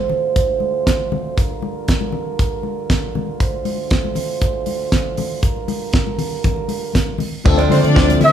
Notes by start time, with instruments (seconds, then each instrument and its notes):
Already playing: french horn section D2 D3 F4 C5
0.09 low conga
0.36 kick, closed hi-hat, muted conga
0.47 muted conga
0.60 high conga
0.87 kick, snare, closed hi-hat
1.00 muted conga
1.12 high conga, low conga
1.37 french horn section G2 A#4, kick, closed hi-hat, muted conga
1.50 muted conga
1.62 high conga
1.88 kick, snare, closed hi-hat, muted conga
2.01 muted conga, high conga
2.12 low conga
2.39 kick, closed hi-hat
2.63 high conga
2.90 kick, snare, closed hi-hat
3.03 muted conga
3.15 high conga, low conga
3.40 french horn section D2 C5, kick, closed hi-hat
3.53 muted conga
3.65 open hi-hat, high conga
3.90 kick, snare, closed hi-hat
4.04 high conga
4.15 open hi-hat, low conga
4.41 kick, closed hi-hat
4.53 muted conga
4.66 open hi-hat, high conga
4.92 kick, snare, closed hi-hat
5.17 open hi-hat, high conga, low conga
5.42 french horn section G2 D3 A#4, kick, closed hi-hat, muted conga
5.56 muted conga
5.68 open hi-hat, high conga
5.93 kick, snare, closed hi-hat
6.07 muted conga, high conga
6.18 open hi-hat, low conga
6.44 kick, closed hi-hat, muted conga, low conga
6.56 muted conga
6.68 open hi-hat, high conga
6.94 kick, snare, closed hi-hat, muted conga, high conga
7.06 muted conga
7.18 open hi-hat, high conga, low conga
7.44 fingered electric bass D2, french horn section D3 F3 A3 C4, tine electric piano F3 A3 C4 D4 A4, muted clean electric guitar stroke, kick, crash, muted conga
7.57 clean electric guitar F4 C5 D5, closed hi-hat, muted conga
7.70 fingered electric bass D3, string section C4 C5, clean electric guitar F4 C5 D5, open hi-hat, high conga
7.82 fingered electric bass D3, string section D4 D5, muted clean electric guitar stroke, closed hi-hat
7.94 fingered electric bass D2, clean electric guitar F4 C5 D5, kick, snare, muted conga
8.07 muted clean electric guitar stroke, closed hi-hat, muted conga, high conga
8.20 fingered electric bass D3, string section E4 E5, muted clean electric guitar stroke, open hi-hat, low conga
8.25 flugelhorn E5